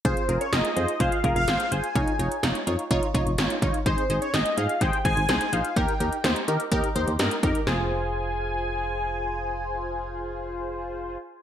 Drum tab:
HH |xxxxxxxxxxxxxxxx|xxxxxxxxxxxxxxxx|xxxxxxxxxxxxxxxx|xxxxxxxxxxxxxxxx|
SD |----o-------o---|----o-------o---|----o-------o---|----o-------o---|
BD |o-------o-o-----|o-------o-o---o-|o-------o-o-----|o-------o-----o-|

HH |----------------|----------------|
SD |o---------------|----------------|
BD |----------------|----------------|